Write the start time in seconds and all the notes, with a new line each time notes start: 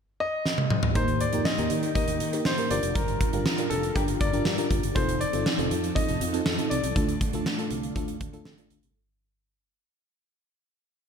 0.20 D#5
0.46 snare
0.58 high tom
0.70 mid tom
0.83 floor tom
0.95 D#2 D#3 A#3 D#4 G4 A#4 C5, kick, closed hi-hat
1.08 closed hi-hat
1.21 D5, closed hi-hat
1.33 F2 A#3 D#4 G4 A#4, closed hi-hat
1.45 D#5, snare
1.58 D#2 A#3 D#4 G4 A#4, closed hi-hat
1.70 D#3, closed hi-hat
1.83 closed hi-hat
1.95 A#3 D#4 G4 A#4 D#5, kick, closed hi-hat
2.08 D#2, closed hi-hat
2.20 D#3, closed hi-hat
2.33 A#3 D#4 G4 A#4, closed hi-hat
2.45 D#3 C5, snare
2.58 A#3 D#4 G4 A#4, closed hi-hat
2.70 G1 G3 D4 F4 G4 A#4 D5, closed hi-hat
2.83 F1, closed hi-hat
2.95 G1 A#4, kick, closed hi-hat
3.08 closed hi-hat
3.21 kick, closed hi-hat
3.33 G1 D4 F4 G4 A#4, closed hi-hat
3.46 snare
3.58 D4 F4 G4 A#4, closed hi-hat
3.70 F1 A4, closed hi-hat
3.83 closed hi-hat
3.95 G1 D4 F4 G4 A#4, kick, closed hi-hat
4.08 closed hi-hat
4.21 G1 D5, kick, closed hi-hat
4.33 D4 F4 G4 A#4, closed hi-hat
4.45 G2, snare
4.58 D4 F4 G4 A#4, closed hi-hat
4.71 G1, kick, closed hi-hat
4.83 G1, closed hi-hat
4.95 F1 F3 C4 D#4 F4 A4 C5, kick, closed hi-hat
5.09 closed hi-hat
5.21 D5, closed hi-hat
5.33 G1 C4 D#4 F4 A4, closed hi-hat
5.46 snare
5.58 F1 C4 D#4 F4 A4, closed hi-hat
5.71 F2, closed hi-hat
5.84 closed hi-hat
5.95 C4 D#4 F4 A4 D#5, kick, closed hi-hat
6.08 F1, closed hi-hat
6.21 F2, closed hi-hat
6.33 C4 D#4 F4 A4, closed hi-hat
6.46 F2, snare
6.58 C4 D#4 F4 A4, closed hi-hat
6.70 C2 D5, closed hi-hat
6.83 C2, closed hi-hat
6.95 D2 D3 A3 D4 F4 A4, kick, closed hi-hat
7.09 closed hi-hat
7.21 kick, closed hi-hat
7.33 D2 A3 D4 F4 A4, closed hi-hat
7.46 snare
7.58 A3 D4 F4 A4, closed hi-hat
7.71 C2, closed hi-hat
7.83 closed hi-hat
7.96 D2 A3 D4 F4 A4, kick, closed hi-hat
8.08 closed hi-hat
8.21 D2, kick, closed hi-hat
8.33 A3 D4 F4 A4, closed hi-hat
8.45 D3, snare
8.58 A3 D4 F4 A4, closed hi-hat
8.70 D2, closed hi-hat
8.83 C2, closed hi-hat